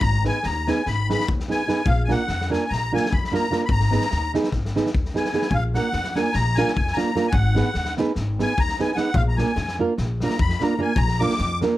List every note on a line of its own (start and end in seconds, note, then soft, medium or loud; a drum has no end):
0.01 0.28 G#1 loud
0.01 0.24 A#5 loud
0.01 kick loud
0.24 0.38 B3 medium
0.24 0.38 D#4 soft
0.24 0.38 G#4 medium
0.24 0.38 B4 medium
0.24 0.46 G#5 loud
0.24 snare soft
0.43 0.70 D#2 loud
0.43 0.69 A#5 loud
0.43 snare soft
0.67 0.80 B3 medium
0.67 0.81 D#4 medium
0.67 0.81 G#4 medium
0.67 0.81 B4 medium
0.67 0.87 G#5 loud
0.67 snare soft
0.86 1.12 G#1 medium
0.86 1.09 B5 loud
0.86 snare soft
1.09 1.22 B3 medium
1.09 1.23 D#4 medium
1.09 1.23 G#4 medium
1.09 1.23 B4 medium
1.09 1.28 B5 loud
1.09 snare soft
1.20 snare soft
1.28 1.42 D#2 loud
1.28 kick medium
1.40 snare soft
1.48 1.61 B3 medium
1.48 1.62 D#4 medium
1.48 1.62 G#4 medium
1.48 1.63 B4 medium
1.48 1.88 G#5 medium
1.48 snare soft
1.68 1.80 B3 medium
1.68 1.80 D#4 medium
1.68 1.80 G#4 medium
1.68 1.81 B4 medium
1.68 snare soft
1.86 2.12 A#1 loud
1.86 2.03 F5 loud
1.86 kick loud
2.04 2.22 A#3 medium
2.04 2.11 G#5 medium
2.09 2.22 D4 soft
2.09 2.22 F4 medium
2.09 2.22 A#4 medium
2.09 2.50 F#5 loud
2.09 snare soft
2.28 2.54 F2 medium
2.28 snare soft
2.41 snare soft
2.50 2.64 A#3 medium
2.50 2.64 D4 medium
2.50 2.64 F4 medium
2.50 2.64 A#4 medium
2.50 2.71 G#5 medium
2.50 snare soft
2.70 2.96 A#1 medium
2.70 2.92 A#5 loud
2.70 snare soft
2.92 3.06 A#3 medium
2.92 3.06 D4 medium
2.92 3.06 F4 medium
2.92 3.07 A#4 medium
2.92 3.13 G#5 loud
2.92 snare soft
3.05 snare soft
3.12 3.26 F2 medium
3.12 3.24 B5 medium
3.12 kick medium
3.24 3.33 B5 medium
3.24 snare soft
3.32 3.45 A#3 medium
3.32 3.45 D4 medium
3.32 3.45 F4 medium
3.32 3.46 A#4 medium
3.32 3.62 A#5 loud
3.32 snare soft
3.51 3.63 A#3 medium
3.51 3.64 D4 medium
3.51 3.64 F4 medium
3.51 3.64 A#4 medium
3.51 snare soft
3.65 3.71 B5 medium
3.65 kick loud
3.70 3.95 G#1 loud
3.70 4.32 A#5 loud
3.80 snare soft
3.91 4.05 B3 medium
3.91 4.05 D#4 medium
3.91 4.05 G#4 soft
3.91 4.05 B4 medium
3.91 snare soft
4.01 snare soft
4.11 4.37 D#2 medium
4.11 snare soft
4.34 4.47 B3 medium
4.34 4.47 D#4 medium
4.34 4.48 G#4 medium
4.34 4.48 B4 medium
4.34 snare soft
4.44 snare soft
4.52 4.78 G#1 medium
4.52 kick medium
4.52 snare soft
4.65 snare soft
4.76 4.89 B3 medium
4.76 4.89 D#4 medium
4.76 4.89 G#4 medium
4.76 4.89 B4 medium
4.76 snare soft
4.86 snare soft
4.95 5.08 D#2 medium
4.95 kick medium
5.05 snare soft
5.14 5.27 B3 medium
5.14 5.28 D#4 medium
5.14 5.28 G#4 medium
5.14 5.28 B4 medium
5.14 5.53 G#5 medium
5.14 snare soft
5.25 snare soft
5.33 5.46 B3 medium
5.33 5.46 D#4 medium
5.33 5.47 G#4 medium
5.33 5.47 B4 medium
5.33 snare soft
5.42 snare soft
5.51 5.77 A#1 loud
5.51 5.64 F5 loud
5.51 kick medium
5.74 5.87 A#3 medium
5.74 5.88 D4 medium
5.74 5.88 F4 medium
5.74 5.88 A#4 medium
5.74 6.18 F#5 loud
5.74 snare soft
5.92 6.19 F2 medium
5.92 snare soft
6.04 snare soft
6.15 6.29 A#3 medium
6.15 6.29 D4 medium
6.15 6.30 F4 soft
6.15 6.30 A#4 medium
6.15 6.35 G#5 medium
6.15 snare soft
6.33 6.60 A#1 loud
6.33 6.58 A#5 loud
6.33 snare soft
6.55 6.70 A#3 medium
6.55 6.71 D4 medium
6.55 6.71 F4 medium
6.55 6.71 A#4 medium
6.55 6.72 G#5 loud
6.55 snare soft
6.67 snare soft
6.74 6.90 F2 loud
6.74 6.97 G#5 medium
6.74 kick medium
6.87 snare soft
6.93 7.09 A#3 medium
6.93 7.10 D4 medium
6.93 7.26 A#5 medium
6.97 7.10 F4 medium
6.97 7.10 A#4 medium
6.97 snare soft
7.15 7.28 A#3 medium
7.15 7.28 D4 medium
7.15 7.28 F4 medium
7.15 7.28 A#4 medium
7.15 snare soft
7.28 7.94 F#5 loud
7.28 7.34 G#5 medium
7.33 7.59 G#1 loud
7.33 kick loud
7.55 7.69 B3 medium
7.55 7.69 D#4 medium
7.55 7.69 G#4 medium
7.55 7.70 B4 medium
7.55 snare soft
7.74 8.00 D#2 medium
7.74 snare soft
7.85 snare soft
7.97 8.10 B3 medium
7.97 8.11 D#4 medium
7.97 8.11 G#4 medium
7.97 8.12 B4 loud
7.97 snare soft
8.15 8.42 G#1 loud
8.15 snare soft
8.39 8.52 B3 medium
8.39 8.53 D#4 medium
8.39 8.53 G#4 medium
8.39 8.53 B4 medium
8.39 8.60 G#5 loud
8.39 snare soft
8.58 8.72 D#2 medium
8.58 8.79 A#5 loud
8.58 kick medium
8.68 snare soft
8.79 8.92 B3 medium
8.79 8.92 D#4 medium
8.79 8.92 G#4 medium
8.79 8.92 B4 medium
8.79 8.91 G#5 medium
8.79 snare soft
8.92 9.15 F#5 medium
8.92 8.97 G#5 medium
8.97 9.09 B3 medium
8.97 9.09 D#4 medium
8.97 9.10 G#4 medium
8.97 9.10 B4 medium
8.97 snare soft
9.14 9.40 A#1 loud
9.14 9.23 F5 loud
9.14 kick loud
9.28 9.38 A#5 medium
9.36 9.51 A#3 medium
9.36 9.51 D4 medium
9.36 9.51 F4 soft
9.36 9.51 A#4 medium
9.36 9.76 G#5 medium
9.36 snare soft
9.56 9.82 F2 loud
9.56 snare soft
9.68 snare soft
9.79 9.92 A#3 medium
9.79 9.92 D4 medium
9.79 9.93 F4 medium
9.79 9.93 A#4 medium
9.98 10.23 A#1 loud
9.98 snare soft
10.20 10.35 A#3 medium
10.20 10.35 D4 medium
10.20 10.35 F4 medium
10.20 10.35 A#4 medium
10.20 10.42 A#5 medium
10.20 snare soft
10.30 snare soft
10.39 10.53 F2 loud
10.39 10.62 B5 medium
10.39 kick medium
10.49 snare soft
10.60 10.73 A#3 medium
10.60 10.74 D4 medium
10.60 10.74 F4 medium
10.60 10.74 A#4 medium
10.60 10.81 A#5 medium
10.60 snare soft
10.79 10.91 A#3 medium
10.79 10.91 D4 medium
10.79 10.92 F4 medium
10.79 10.92 A#4 medium
10.79 10.99 G#5 medium
10.96 11.22 A#1 loud
10.96 11.21 A#5 loud
10.96 kick loud
11.08 snare soft
11.20 11.33 A#3 medium
11.20 11.33 D4 medium
11.20 11.33 F4 medium
11.20 11.33 A#4 medium
11.20 11.59 D6 loud
11.20 snare soft
11.29 snare soft
11.38 11.64 F2 loud
11.38 snare soft
11.61 11.74 A#3 medium
11.61 11.75 D4 medium
11.61 11.75 F4 medium
11.61 11.75 A#4 medium
11.61 snare soft